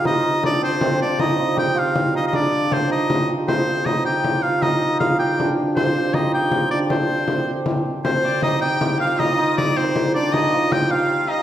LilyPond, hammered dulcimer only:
\new Staff \with { instrumentName = "Hammered dulcimer" } { \time 6/8 \key c \minor \tempo 4. = 105 ees'4 d'8 c'8 c'8 d'8 | ees'8 f'8 g'8 f'4 ees'8 | d'4 c'8 ees'4~ ees'32 r16. | c'4 ees'8 g'4 f'8 |
ees'4 f'8 g'8 d'8 r8 | c'4 ees'8 g'4 d'8 | c'2 r4 | c'4 ees'8 g'8 g'8 f'16. f'32 |
ees'8 ees'4 c'4 d'8 | ees'8 f'8 g'8 f'8 f'8 ees'8 | }